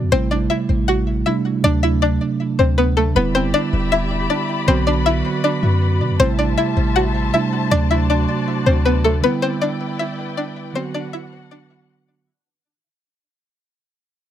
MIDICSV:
0, 0, Header, 1, 5, 480
1, 0, Start_track
1, 0, Key_signature, 1, "minor"
1, 0, Tempo, 379747
1, 153, Time_signature, 4, 2, 24, 8
1, 18079, End_track
2, 0, Start_track
2, 0, Title_t, "String section"
2, 0, Program_c, 0, 48
2, 3993, Note_on_c, 0, 74, 70
2, 3994, Note_on_c, 0, 67, 79
2, 3994, Note_on_c, 0, 76, 70
2, 3994, Note_on_c, 0, 83, 87
2, 5894, Note_off_c, 0, 67, 0
2, 5894, Note_off_c, 0, 76, 0
2, 5914, Note_on_c, 0, 66, 79
2, 5914, Note_on_c, 0, 71, 71
2, 7795, Note_off_c, 0, 74, 0
2, 7795, Note_off_c, 0, 83, 0
2, 7814, Note_off_c, 0, 66, 0
2, 7815, Note_off_c, 0, 71, 0
2, 7835, Note_on_c, 0, 55, 76
2, 7835, Note_on_c, 0, 72, 74
2, 7835, Note_on_c, 0, 76, 70
2, 7835, Note_on_c, 0, 81, 88
2, 9735, Note_off_c, 0, 55, 0
2, 9735, Note_off_c, 0, 76, 0
2, 9755, Note_on_c, 0, 66, 76
2, 9755, Note_on_c, 0, 74, 71
2, 11636, Note_off_c, 0, 72, 0
2, 11636, Note_off_c, 0, 81, 0
2, 11655, Note_off_c, 0, 66, 0
2, 11655, Note_off_c, 0, 74, 0
2, 11674, Note_on_c, 0, 64, 76
2, 11674, Note_on_c, 0, 71, 67
2, 11674, Note_on_c, 0, 74, 69
2, 11674, Note_on_c, 0, 79, 83
2, 13574, Note_off_c, 0, 74, 0
2, 13575, Note_off_c, 0, 64, 0
2, 13575, Note_off_c, 0, 79, 0
2, 13595, Note_on_c, 0, 62, 75
2, 13595, Note_on_c, 0, 66, 69
2, 13596, Note_on_c, 0, 78, 86
2, 15475, Note_off_c, 0, 71, 0
2, 15495, Note_off_c, 0, 62, 0
2, 15495, Note_off_c, 0, 66, 0
2, 15495, Note_off_c, 0, 78, 0
2, 18079, End_track
3, 0, Start_track
3, 0, Title_t, "Synth pluck"
3, 0, Program_c, 1, 84
3, 152, Note_on_c, 1, 72, 113
3, 161, Note_on_c, 1, 60, 84
3, 358, Note_off_c, 1, 72, 0
3, 363, Note_off_c, 1, 60, 0
3, 392, Note_on_c, 1, 74, 88
3, 401, Note_on_c, 1, 62, 67
3, 597, Note_off_c, 1, 74, 0
3, 603, Note_off_c, 1, 62, 0
3, 630, Note_on_c, 1, 76, 89
3, 640, Note_on_c, 1, 64, 68
3, 1083, Note_off_c, 1, 76, 0
3, 1088, Note_off_c, 1, 64, 0
3, 1112, Note_on_c, 1, 78, 93
3, 1122, Note_on_c, 1, 66, 73
3, 1564, Note_off_c, 1, 78, 0
3, 1569, Note_off_c, 1, 66, 0
3, 1591, Note_on_c, 1, 76, 76
3, 1601, Note_on_c, 1, 64, 64
3, 2043, Note_off_c, 1, 76, 0
3, 2049, Note_off_c, 1, 64, 0
3, 2072, Note_on_c, 1, 74, 115
3, 2082, Note_on_c, 1, 62, 91
3, 2278, Note_off_c, 1, 74, 0
3, 2283, Note_off_c, 1, 62, 0
3, 2313, Note_on_c, 1, 76, 89
3, 2323, Note_on_c, 1, 64, 71
3, 2518, Note_off_c, 1, 76, 0
3, 2524, Note_off_c, 1, 64, 0
3, 2554, Note_on_c, 1, 74, 87
3, 2564, Note_on_c, 1, 62, 69
3, 3231, Note_off_c, 1, 74, 0
3, 3236, Note_off_c, 1, 62, 0
3, 3271, Note_on_c, 1, 72, 72
3, 3282, Note_on_c, 1, 60, 58
3, 3477, Note_off_c, 1, 72, 0
3, 3483, Note_off_c, 1, 60, 0
3, 3512, Note_on_c, 1, 71, 80
3, 3522, Note_on_c, 1, 59, 65
3, 3718, Note_off_c, 1, 71, 0
3, 3723, Note_off_c, 1, 59, 0
3, 3751, Note_on_c, 1, 69, 81
3, 3762, Note_on_c, 1, 57, 64
3, 3957, Note_off_c, 1, 69, 0
3, 3963, Note_off_c, 1, 57, 0
3, 3993, Note_on_c, 1, 71, 104
3, 4003, Note_on_c, 1, 59, 78
3, 4199, Note_off_c, 1, 71, 0
3, 4204, Note_off_c, 1, 59, 0
3, 4232, Note_on_c, 1, 72, 100
3, 4243, Note_on_c, 1, 60, 77
3, 4438, Note_off_c, 1, 72, 0
3, 4444, Note_off_c, 1, 60, 0
3, 4472, Note_on_c, 1, 74, 98
3, 4482, Note_on_c, 1, 62, 74
3, 4924, Note_off_c, 1, 74, 0
3, 4929, Note_off_c, 1, 62, 0
3, 4953, Note_on_c, 1, 76, 93
3, 4964, Note_on_c, 1, 64, 72
3, 5405, Note_off_c, 1, 76, 0
3, 5410, Note_off_c, 1, 64, 0
3, 5434, Note_on_c, 1, 74, 79
3, 5444, Note_on_c, 1, 62, 58
3, 5885, Note_off_c, 1, 74, 0
3, 5890, Note_off_c, 1, 62, 0
3, 5913, Note_on_c, 1, 72, 101
3, 5923, Note_on_c, 1, 60, 84
3, 6118, Note_off_c, 1, 72, 0
3, 6124, Note_off_c, 1, 60, 0
3, 6153, Note_on_c, 1, 74, 83
3, 6163, Note_on_c, 1, 62, 69
3, 6358, Note_off_c, 1, 74, 0
3, 6364, Note_off_c, 1, 62, 0
3, 6394, Note_on_c, 1, 76, 96
3, 6404, Note_on_c, 1, 64, 72
3, 6845, Note_off_c, 1, 76, 0
3, 6850, Note_off_c, 1, 64, 0
3, 6875, Note_on_c, 1, 74, 82
3, 6884, Note_on_c, 1, 62, 67
3, 7783, Note_off_c, 1, 74, 0
3, 7788, Note_off_c, 1, 62, 0
3, 7832, Note_on_c, 1, 72, 114
3, 7843, Note_on_c, 1, 60, 86
3, 8038, Note_off_c, 1, 72, 0
3, 8044, Note_off_c, 1, 60, 0
3, 8072, Note_on_c, 1, 74, 86
3, 8082, Note_on_c, 1, 62, 68
3, 8278, Note_off_c, 1, 74, 0
3, 8283, Note_off_c, 1, 62, 0
3, 8311, Note_on_c, 1, 76, 90
3, 8321, Note_on_c, 1, 64, 68
3, 8763, Note_off_c, 1, 76, 0
3, 8769, Note_off_c, 1, 64, 0
3, 8793, Note_on_c, 1, 78, 96
3, 8804, Note_on_c, 1, 66, 71
3, 9245, Note_off_c, 1, 78, 0
3, 9250, Note_off_c, 1, 66, 0
3, 9273, Note_on_c, 1, 76, 81
3, 9282, Note_on_c, 1, 64, 63
3, 9724, Note_off_c, 1, 76, 0
3, 9729, Note_off_c, 1, 64, 0
3, 9751, Note_on_c, 1, 74, 118
3, 9761, Note_on_c, 1, 62, 88
3, 9957, Note_off_c, 1, 74, 0
3, 9963, Note_off_c, 1, 62, 0
3, 9993, Note_on_c, 1, 76, 88
3, 10003, Note_on_c, 1, 64, 69
3, 10198, Note_off_c, 1, 76, 0
3, 10204, Note_off_c, 1, 64, 0
3, 10235, Note_on_c, 1, 74, 87
3, 10245, Note_on_c, 1, 62, 69
3, 10911, Note_off_c, 1, 74, 0
3, 10916, Note_off_c, 1, 62, 0
3, 10951, Note_on_c, 1, 72, 73
3, 10961, Note_on_c, 1, 60, 59
3, 11157, Note_off_c, 1, 72, 0
3, 11163, Note_off_c, 1, 60, 0
3, 11192, Note_on_c, 1, 71, 78
3, 11201, Note_on_c, 1, 59, 65
3, 11397, Note_off_c, 1, 71, 0
3, 11403, Note_off_c, 1, 59, 0
3, 11432, Note_on_c, 1, 69, 84
3, 11443, Note_on_c, 1, 57, 66
3, 11638, Note_off_c, 1, 69, 0
3, 11644, Note_off_c, 1, 57, 0
3, 11674, Note_on_c, 1, 71, 107
3, 11684, Note_on_c, 1, 59, 82
3, 11879, Note_off_c, 1, 71, 0
3, 11884, Note_off_c, 1, 59, 0
3, 11911, Note_on_c, 1, 72, 98
3, 11921, Note_on_c, 1, 60, 76
3, 12117, Note_off_c, 1, 72, 0
3, 12123, Note_off_c, 1, 60, 0
3, 12153, Note_on_c, 1, 74, 91
3, 12164, Note_on_c, 1, 62, 66
3, 12604, Note_off_c, 1, 74, 0
3, 12610, Note_off_c, 1, 62, 0
3, 12632, Note_on_c, 1, 76, 82
3, 12642, Note_on_c, 1, 64, 66
3, 13084, Note_off_c, 1, 76, 0
3, 13089, Note_off_c, 1, 64, 0
3, 13113, Note_on_c, 1, 74, 79
3, 13122, Note_on_c, 1, 62, 57
3, 13564, Note_off_c, 1, 74, 0
3, 13569, Note_off_c, 1, 62, 0
3, 13593, Note_on_c, 1, 72, 92
3, 13603, Note_on_c, 1, 60, 71
3, 13798, Note_off_c, 1, 72, 0
3, 13804, Note_off_c, 1, 60, 0
3, 13834, Note_on_c, 1, 74, 85
3, 13843, Note_on_c, 1, 62, 68
3, 14038, Note_off_c, 1, 74, 0
3, 14044, Note_off_c, 1, 62, 0
3, 14071, Note_on_c, 1, 76, 85
3, 14081, Note_on_c, 1, 64, 76
3, 14523, Note_off_c, 1, 76, 0
3, 14529, Note_off_c, 1, 64, 0
3, 14552, Note_on_c, 1, 74, 81
3, 14562, Note_on_c, 1, 62, 59
3, 15462, Note_off_c, 1, 74, 0
3, 15467, Note_off_c, 1, 62, 0
3, 18079, End_track
4, 0, Start_track
4, 0, Title_t, "Tine electric piano"
4, 0, Program_c, 2, 4
4, 0, Control_c, 2, 64, 127
4, 0, Note_on_c, 2, 50, 68
4, 0, Note_on_c, 2, 54, 64
4, 0, Note_on_c, 2, 59, 62
4, 0, Note_on_c, 2, 66, 76
4, 130, Note_off_c, 2, 66, 0
4, 136, Note_on_c, 2, 48, 69
4, 153, Note_on_c, 2, 55, 63
4, 169, Note_on_c, 2, 57, 67
4, 170, Control_c, 2, 64, 0
4, 172, Note_off_c, 2, 59, 0
4, 177, Note_off_c, 2, 54, 0
4, 181, Note_off_c, 2, 50, 0
4, 186, Note_on_c, 2, 64, 81
4, 389, Control_c, 2, 64, 127
4, 1556, Note_off_c, 2, 48, 0
4, 1564, Note_off_c, 2, 55, 0
4, 1573, Note_off_c, 2, 57, 0
4, 1581, Note_off_c, 2, 64, 0
4, 1587, Note_on_c, 2, 48, 53
4, 1596, Note_on_c, 2, 55, 48
4, 1604, Note_on_c, 2, 57, 53
4, 1613, Note_on_c, 2, 62, 59
4, 2040, Note_off_c, 2, 48, 0
4, 2055, Note_on_c, 2, 48, 68
4, 2072, Note_on_c, 2, 54, 63
4, 2074, Note_off_c, 2, 57, 0
4, 2075, Note_off_c, 2, 55, 0
4, 2083, Note_off_c, 2, 62, 0
4, 2089, Control_c, 2, 64, 0
4, 2089, Note_on_c, 2, 57, 59
4, 2106, Note_on_c, 2, 62, 78
4, 2278, Control_c, 2, 64, 127
4, 3946, Note_off_c, 2, 48, 0
4, 3954, Note_off_c, 2, 54, 0
4, 3963, Note_off_c, 2, 57, 0
4, 3965, Note_on_c, 2, 50, 65
4, 3971, Note_off_c, 2, 62, 0
4, 3981, Note_on_c, 2, 55, 62
4, 3998, Note_on_c, 2, 59, 66
4, 4009, Control_c, 2, 64, 0
4, 4015, Note_on_c, 2, 64, 82
4, 4235, Control_c, 2, 64, 127
4, 5860, Note_off_c, 2, 50, 0
4, 5869, Note_off_c, 2, 55, 0
4, 5877, Note_off_c, 2, 59, 0
4, 5886, Note_off_c, 2, 64, 0
4, 5893, Note_on_c, 2, 50, 72
4, 5909, Note_on_c, 2, 54, 66
4, 5926, Note_on_c, 2, 59, 61
4, 5927, Control_c, 2, 64, 0
4, 5942, Note_on_c, 2, 66, 77
4, 6185, Control_c, 2, 64, 127
4, 7784, Note_off_c, 2, 50, 0
4, 7793, Note_off_c, 2, 54, 0
4, 7801, Note_off_c, 2, 59, 0
4, 7810, Note_off_c, 2, 66, 0
4, 7816, Note_on_c, 2, 48, 71
4, 7833, Note_on_c, 2, 55, 62
4, 7849, Control_c, 2, 64, 0
4, 7849, Note_on_c, 2, 57, 64
4, 7866, Note_on_c, 2, 64, 81
4, 8038, Control_c, 2, 64, 127
4, 9236, Note_off_c, 2, 48, 0
4, 9244, Note_off_c, 2, 55, 0
4, 9253, Note_off_c, 2, 57, 0
4, 9261, Note_off_c, 2, 64, 0
4, 9268, Note_on_c, 2, 48, 55
4, 9276, Note_on_c, 2, 55, 47
4, 9284, Note_on_c, 2, 57, 52
4, 9293, Note_on_c, 2, 62, 60
4, 9721, Note_off_c, 2, 48, 0
4, 9736, Note_on_c, 2, 48, 69
4, 9752, Note_on_c, 2, 54, 62
4, 9754, Note_off_c, 2, 57, 0
4, 9755, Note_off_c, 2, 55, 0
4, 9763, Note_off_c, 2, 62, 0
4, 9769, Control_c, 2, 64, 0
4, 9769, Note_on_c, 2, 57, 62
4, 9786, Note_on_c, 2, 62, 75
4, 9973, Control_c, 2, 64, 127
4, 11626, Note_off_c, 2, 48, 0
4, 11634, Note_off_c, 2, 54, 0
4, 11643, Note_off_c, 2, 57, 0
4, 11646, Note_on_c, 2, 50, 65
4, 11652, Note_off_c, 2, 62, 0
4, 11662, Note_on_c, 2, 55, 58
4, 11679, Note_on_c, 2, 59, 63
4, 11687, Control_c, 2, 64, 0
4, 11696, Note_on_c, 2, 64, 72
4, 11930, Control_c, 2, 64, 127
4, 13541, Note_off_c, 2, 50, 0
4, 13549, Note_off_c, 2, 55, 0
4, 13558, Note_off_c, 2, 59, 0
4, 13560, Note_on_c, 2, 50, 68
4, 13566, Note_off_c, 2, 64, 0
4, 13577, Note_on_c, 2, 54, 59
4, 13594, Note_on_c, 2, 59, 61
4, 13610, Note_on_c, 2, 66, 78
4, 13611, Control_c, 2, 64, 0
4, 13807, Control_c, 2, 64, 127
4, 15458, Note_off_c, 2, 50, 0
4, 15467, Note_off_c, 2, 54, 0
4, 15475, Note_off_c, 2, 59, 0
4, 15484, Note_off_c, 2, 66, 0
4, 15529, Control_c, 2, 64, 0
4, 18079, End_track
5, 0, Start_track
5, 0, Title_t, "808-style bass"
5, 0, Program_c, 3, 38
5, 33, Note_on_c, 3, 42, 96
5, 147, Note_off_c, 3, 42, 0
5, 153, Note_on_c, 3, 33, 114
5, 614, Note_off_c, 3, 33, 0
5, 873, Note_on_c, 3, 33, 106
5, 1564, Note_off_c, 3, 33, 0
5, 2074, Note_on_c, 3, 38, 115
5, 2765, Note_off_c, 3, 38, 0
5, 3273, Note_on_c, 3, 38, 104
5, 3964, Note_off_c, 3, 38, 0
5, 3993, Note_on_c, 3, 28, 109
5, 4353, Note_on_c, 3, 30, 101
5, 4372, Note_off_c, 3, 28, 0
5, 4467, Note_off_c, 3, 30, 0
5, 4713, Note_on_c, 3, 28, 108
5, 5404, Note_off_c, 3, 28, 0
5, 5913, Note_on_c, 3, 35, 117
5, 6604, Note_off_c, 3, 35, 0
5, 7113, Note_on_c, 3, 42, 103
5, 7593, Note_on_c, 3, 47, 102
5, 7612, Note_off_c, 3, 42, 0
5, 7713, Note_on_c, 3, 42, 98
5, 7732, Note_off_c, 3, 47, 0
5, 7827, Note_off_c, 3, 42, 0
5, 7834, Note_on_c, 3, 33, 117
5, 8294, Note_off_c, 3, 33, 0
5, 8554, Note_on_c, 3, 33, 107
5, 9245, Note_off_c, 3, 33, 0
5, 9753, Note_on_c, 3, 38, 122
5, 10445, Note_off_c, 3, 38, 0
5, 10954, Note_on_c, 3, 38, 107
5, 11645, Note_off_c, 3, 38, 0
5, 18079, End_track
0, 0, End_of_file